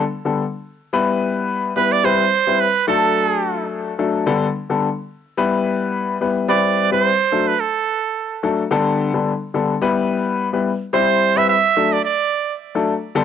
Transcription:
0.25 grand piano D3 G3 B3 D4 A4
0.93 grand piano G3 B3 E4 B4
1.76 grand piano G3 B3 E4 B4, trumpet B4
1.92 trumpet D5
2.04 grand piano G3 C4 E4 B4, trumpet C5
2.47 grand piano G3 C4 E4 B4
2.61 trumpet B4
2.87 grand piano F#3 A3 D4 A4, trumpet A4
3.98 grand piano F#3 A3 D4 A4
4.26 grand piano D3 G3 B3 D4 A4
4.69 grand piano D3 G3 B3 D4 A4
5.37 grand piano G3 B3 E4 B4
6.21 grand piano G3 B3 E4 B4
6.48 grand piano G3 C4 E4 B4, trumpet D5
6.91 grand piano G3 C4 E4 B4, trumpet C5
7.32 grand piano F#3 A3 D4 A4
7.48 trumpet B4
7.60 trumpet A4
8.43 grand piano F#3 A3 D4 A4
8.71 grand piano D3 G3 B3 D4 A4
9.14 grand piano D3 G3 B3 D4 A4
9.54 grand piano D3 G3 B3 D4 A4
9.82 grand piano G3 B3 E4 B4
10.53 grand piano G3 B3 E4 B4
10.93 grand piano G3 C4 E4 C5, trumpet C5
11.36 grand piano G3 C4 E4 B4, trumpet E5
11.50 trumpet E5
11.76 grand piano F#3 A3 D4 A4
11.93 trumpet D5
12.05 trumpet D5
12.75 grand piano F#3 A3 D4 A4
13.15 grand piano D3 G3 B3 D4 A4

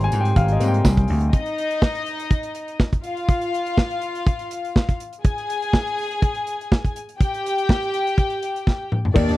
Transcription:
Already playing: french horn section F3 C4 G4, grand piano G3 A#3 C4 G#5 A#5 C6
0.01 grand piano G#5, closed hi-hat
0.12 slap bass G#2, closed hi-hat, tambourine
0.20 grand piano G5
0.25 closed hi-hat
0.36 slap bass G#1, grand piano F5, kick, closed hi-hat
0.48 closed hi-hat
0.52 grand piano D#5
0.59 slap bass G#2, grand piano G3 A#3 C4, closed hi-hat, tambourine
0.68 grand piano G5
0.74 closed hi-hat
0.85 slap bass C2, kick, snare, tambourine
0.97 kick, closed hi-hat
1.08 slap bass D2, open hi-hat
1.21 closed hi-hat
1.33 string section D#4 D#5, kick, closed hi-hat
1.46 closed hi-hat
1.58 closed hi-hat
1.71 closed hi-hat
1.82 kick, snare
1.95 closed hi-hat
2.06 closed hi-hat
2.19 closed hi-hat
2.30 kick, closed hi-hat
2.43 closed hi-hat
2.55 closed hi-hat
2.68 closed hi-hat
2.80 kick, snare
2.93 kick, closed hi-hat
3.04 string section F4 F5, closed hi-hat
3.17 closed hi-hat
3.29 kick, closed hi-hat
3.41 closed hi-hat
3.54 closed hi-hat
3.66 closed hi-hat
3.78 kick, snare
3.91 closed hi-hat
4.02 closed hi-hat
4.15 closed hi-hat
4.27 kick, closed hi-hat
4.39 closed hi-hat
4.51 closed hi-hat
4.65 closed hi-hat
4.76 kick, snare
4.89 kick, closed hi-hat
5.00 closed hi-hat
5.13 closed hi-hat
5.24 string section G#4 G#5, kick, closed hi-hat
5.38 closed hi-hat
5.50 closed hi-hat
5.62 closed hi-hat
5.73 kick, snare
5.87 closed hi-hat
5.98 open hi-hat
6.11 closed hi-hat
6.22 kick, closed hi-hat
6.35 closed hi-hat
6.47 closed hi-hat
6.61 closed hi-hat
6.72 kick, snare
6.85 kick, closed hi-hat
6.96 closed hi-hat
7.09 closed hi-hat
7.19 string section G4 G5, kick, closed hi-hat
7.34 closed hi-hat
7.46 closed hi-hat
7.58 closed hi-hat
7.69 kick, snare
7.82 closed hi-hat
7.94 closed hi-hat
8.07 closed hi-hat
8.18 kick, closed hi-hat
8.30 closed hi-hat
8.43 closed hi-hat
8.56 closed hi-hat
8.67 kick, snare
8.92 mid tom
9.05 floor tom
9.14 slap bass D#2, grand piano D#3 A#3 D4 G4, french horn section D#3 A#3 G4, string section D4 D5, kick, crash, tambourine
9.29 slap bass D#2, snare, closed hi-hat

